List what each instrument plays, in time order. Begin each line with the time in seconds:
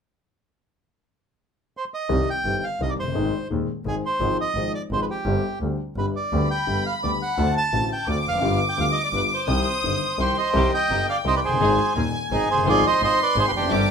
1.77 bandoneon C5
1.94 bandoneon D#5
2.09 grand piano C2 C3 D#3 G3 C4 G4, double bass C2
2.30 bandoneon G5
2.45 double bass G1, grand piano G1 G2 D#3 G3 C4 G4
2.64 bandoneon F5
2.80 double bass C2, grand piano C2 C3 D#3 G3 C4 G4, bandoneon D#5
2.90 bandoneon D5
2.97 double bass F#1, bandoneon C5
3.03 grand piano F1
3.07 grand piano F#1
3.12 grand piano G1 G#1 G#2 D#3 G#3 C4 G#4, double bass G#1
3.50 grand piano D#1 D#2 D#3 G#3 C4 G#4, double bass D#2
3.85 grand piano G#1 G#2 D#3 G#3 C4 G#4, double bass G#1, bandoneon G#4
4.06 bandoneon C5
4.20 double bass G#1, grand piano G#1 G#2 F3 G#3 C4 G#4
4.41 bandoneon D#5
4.55 double bass G#1, grand piano G#1 G#2 F3 G#3 C4 G#4
4.75 bandoneon D5
4.91 double bass G#1, grand piano G#1 G#2 F3 G#3 C4 G#4, bandoneon C5
5.02 bandoneon B4
5.10 bandoneon G4
5.26 double bass G1, grand piano G1 G2 D3 G3 C4 G4
5.61 double bass D2, grand piano D2 D3 G3 C4 G4
5.96 double bass G1, grand piano G1 G2 D3 G3 B3 G4, bandoneon B4
6.16 bandoneon D5
6.32 grand piano D2 D3 G3 B3 G4, double bass D2, violin section B5
6.51 bandoneon G5
6.67 grand piano G1 G2 D3 G3 B3 G4, double bass G1
6.86 bandoneon F5
7.03 grand piano D2 D3 G3 B3 G4, double bass D2, bandoneon D5
7.22 bandoneon F#5
7.38 grand piano D2 D3 A3 C4 F#4, double bass D2, violin section A5
7.57 bandoneon A5
7.73 grand piano A1 A2 D3 A3 C4 F#4, double bass A1
7.93 bandoneon G5
8.07 grand piano D2 D3 A3 C4 F#4, double bass D2, bandoneon D5, violin section D6
8.25 double bass F1, grand piano E2, bandoneon F5
8.33 grand piano F2
8.38 grand piano F#2 D3
8.42 grand piano G1 G2 G3 B3 F4, double bass G1, violin section D6
8.69 bandoneon G5
8.77 double bass D2, grand piano D2 D3 G3 B3 F4, bandoneon F5
8.92 bandoneon D#5
9.04 bandoneon D5
9.13 double bass G1, grand piano G1 G2 D3 G3 B3 F4, bandoneon B4
9.34 bandoneon C5
9.47 double bass C2, grand piano C2 C3 D#3 G3 C4 G4, violin section D#6
9.83 double bass G1, grand piano G1 G2 D#3 G3 C4 G4
10.18 grand piano C2 C3 D#3 G3 C4 G4, double bass C2, bandoneon G4 C5, violin section C6
10.38 bandoneon C5 D#5
10.54 grand piano C2 C3 D#3 G3 C4 G4, double bass C2, string section C4 D#4 G4, violin section G5
10.74 bandoneon D#5 G5
10.90 double bass G1, grand piano G1 G2, string section C4 D#4 G4
11.09 bandoneon D5 F5
11.25 grand piano C2 C3, double bass C2, string section C4 D#4 G4, bandoneon C5 D#5
11.36 bandoneon B4 D5
11.43 double bass F#1, bandoneon G#4 C5
11.48 grand piano F1 F#1
11.56 grand piano G1
11.61 grand piano G#1 G#2 D#3 G#3 C4 G#4, double bass G#1, string section C4 D#4 G#4, violin section G#5
11.95 grand piano D#1 D#2, double bass D#2, string section C4 D#4 G#4
12.31 double bass G#1, grand piano G#1 G#2, string section C4 D#4 G#4, bandoneon D#4 G#4
12.49 double bass F#1, bandoneon G#4 C5
12.54 grand piano F1 F#1
12.62 grand piano G1, string section C4
12.66 double bass G#1, grand piano G#1 G#2 F3 G#3 C4 G#4, string section F4 G#4, bandoneon G#4 D5, violin section C6
12.86 bandoneon C5 D#5
13.01 double bass G#1, grand piano G#1 G#2, string section C4 F4 G#4, bandoneon C5 D#5
13.23 bandoneon B4 D5
13.36 double bass G#1, grand piano G#1 G#2, string section C4 F4 G#4, bandoneon G#4 C5
13.48 bandoneon G4 B4
13.53 double bass F1, bandoneon D4 G4
13.58 grand piano E2 F2
13.67 double bass G1, grand piano F#2 D3 G3 C4, string section C4 D4
13.71 grand piano G1 G2 G4, string section G4, violin section D6